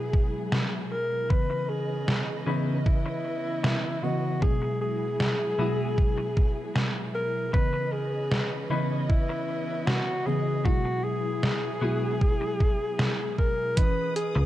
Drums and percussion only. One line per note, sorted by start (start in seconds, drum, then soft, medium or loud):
0.13 kick loud
0.52 snare loud
1.30 kick loud
2.08 snare loud
2.86 kick loud
3.64 snare loud
4.42 kick loud
5.20 snare loud
5.98 kick loud
6.37 kick medium
6.76 snare loud
7.54 kick loud
8.31 snare loud
9.10 kick loud
9.87 snare loud
10.65 kick loud
11.43 snare loud
12.21 kick loud
12.60 kick medium
12.99 snare loud
13.38 kick medium
13.77 kick loud
13.77 closed hi-hat medium
14.16 closed hi-hat medium